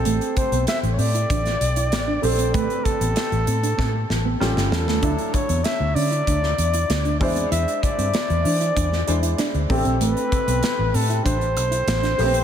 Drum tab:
HH |xxxxxxoxxxxxx-ox|xxxxxxxx--------|xxxxx-oxx-xxxxox|xxxxxxoxx-xxxxox|
SD |----o----o--o---|----o---o-o-oooo|----o----o--o---|----o----o--o---|
BD |--o-----o-------|o-o-----o-------|o-o-----o-----o-|--o-----o-----o-|

HH |xxxxx-oxxxxxxxox|
SD |----o-------oo--|
BD |--o-----o-------|